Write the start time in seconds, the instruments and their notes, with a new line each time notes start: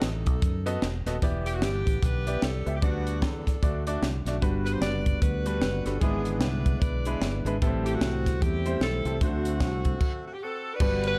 Already playing: saxophone section A3
0.02 fingered electric bass A1, saxophone section D#4 A4, snare, closed hi-hat
0.26 fingered electric bass B1, kick, closed hi-hat
0.42 fingered electric bass F#2, kick, closed hi-hat
0.66 grand piano B3 F#4 A4 D#5, closed hi-hat
0.82 fingered electric bass E1, snare, closed hi-hat
1.06 fingered electric bass D#1, grand piano B3 F#4 A4 D#5, snare, closed hi-hat
1.22 fingered electric bass E1, grand piano E3 B3 E4 G4 D5, kick, closed hi-hat
1.46 saxophone section G4, closed hi-hat
1.55 saxophone section F#4
1.62 fingered electric bass G1, saxophone section B3 D4 G4, snare, closed hi-hat
1.87 fingered electric bass A1, kick, closed hi-hat
2.02 fingered electric bass B1, saxophone section D4 G4 B4, kick, closed hi-hat
2.27 grand piano B3 E4 G4 D5, closed hi-hat
2.42 fingered electric bass C2, saxophone section D4 A4, snare, closed hi-hat
2.66 fingered electric bass C#2, grand piano B3 E4 G4 E5, closed hi-hat
2.75 saxophone section G4
2.82 fingered electric bass D2, grand piano D3 G3 B3 D4 D5, saxophone section B3 D4 F#4, kick, closed hi-hat
3.07 closed hi-hat
3.22 fingered electric bass E2, saxophone section D4 A4, kick, snare, closed hi-hat
3.47 kick, snare, closed hi-hat
3.62 fingered electric bass D2, grand piano D3 A3 D4 F#4 D5, kick, closed hi-hat
3.87 grand piano A3 D4 F#4 D5, closed hi-hat
4.02 fingered electric bass C2, snare, closed hi-hat
4.25 fingered electric bass B1, grand piano A3 D4 F#4 D5, snare, closed hi-hat
4.41 fingered electric bass G1, grand piano G2 G3 D4 F#4 B4, tonewheel organ D3 G3 B3 F#4, kick, closed hi-hat
4.65 saxophone section B4, closed hi-hat
4.72 saxophone section C5
4.81 fingered electric bass F#1, saxophone section F#4 B4 D5, snare, closed hi-hat
5.06 kick, closed hi-hat
5.22 fingered electric bass D2, saxophone section D4 F#4 B4, kick, closed hi-hat
5.45 grand piano G3 D4 F#4 B4, closed hi-hat
5.61 fingered electric bass F#1, snare, closed hi-hat
5.84 fingered electric bass G1, grand piano G3 D4 F#4 B4, saxophone section A4, snare, closed hi-hat
6.00 fingered electric bass G#1, grand piano G#2 G#3 D4 E4 B4, tonewheel organ D3 G#3 B3 E4, saxophone section B3 D4 G#4, kick, closed hi-hat
6.25 closed hi-hat
6.32 saxophone section G#4
6.39 fingered electric bass C2, saxophone section D4 E4 B4, snare, closed hi-hat
6.66 kick, closed hi-hat
6.80 fingered electric bass B1, saxophone section B4 D5, kick, closed hi-hat
7.05 grand piano G#3 D4 E4 B4, closed hi-hat
7.21 fingered electric bass G1, snare, closed hi-hat
7.45 fingered electric bass G#1, grand piano G#3 D4 E4 B4, closed hi-hat
7.62 fingered electric bass A1, grand piano A2 G3 B3 E4 A4, tonewheel organ E3 G3 A3 B3, kick, closed hi-hat
7.67 grand piano C4, tonewheel organ C4
7.86 saxophone section G4, closed hi-hat
7.94 saxophone section C4 F#4
8.01 fingered electric bass C2, snare, closed hi-hat
8.26 kick, snare, closed hi-hat
8.42 fingered electric bass E2, saxophone section C4 E4 G4, kick, closed hi-hat
8.66 grand piano G3 C4 E4 C5, closed hi-hat
8.80 fingered electric bass B1, saxophone section C4 E4 A4, snare, closed hi-hat
9.05 fingered electric bass C2, grand piano G3 C4 E4 A4, closed hi-hat
9.21 fingered electric bass D2, grand piano D3 A3 D4 F#4 C5, tonewheel organ D3 A3 C4 F#4, saxophone section A3 C4 F#4, kick, closed hi-hat
9.45 closed hi-hat
9.60 fingered electric bass C2, kick, snare, closed hi-hat
9.85 kick, closed hi-hat
10.01 kick, crash
10.26 saxophone section F#4
10.33 saxophone section G4
10.42 saxophone section C4 F#4 A4
10.74 saxophone section D4 F#4 B4
10.80 fingered electric bass G1, grand piano G2 G3 B3 D4 F#4 B4, tonewheel organ G3 B3 D4 F#4 B4, kick, crash
11.04 saxophone section D4 F#4 B4, ride